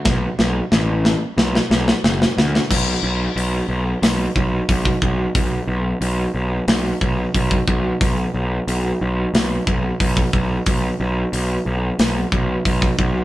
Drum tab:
CC |----------------|x---------------|----------------|----------------|
HH |----------------|----o---o---o---|o---o---o---o---|o---o---o---o---|
SD |o-o-o-o-oooooooo|--------o-------|--------o-------|--------o-------|
BD |o---------------|o---------o-ooo-|o---------o-ooo-|o---------o-ooo-|

CC |----------------|
HH |o---o---o---o---|
SD |--------o-------|
BD |o---------o-ooo-|